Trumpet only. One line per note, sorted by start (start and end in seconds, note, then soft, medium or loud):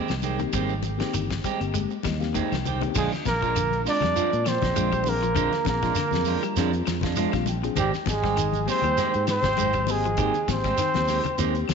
2.97 3.10 G#4 medium
3.27 3.82 A#4 loud
3.88 4.50 D5 loud
4.48 5.10 C5 loud
5.09 5.67 A#4 loud
5.68 6.84 A#4 medium
7.78 7.91 G4 medium
8.10 8.65 G#4 medium
8.70 9.25 C5 loud
9.31 9.92 C5 loud
9.91 10.49 G#4 medium
10.51 11.66 C5 loud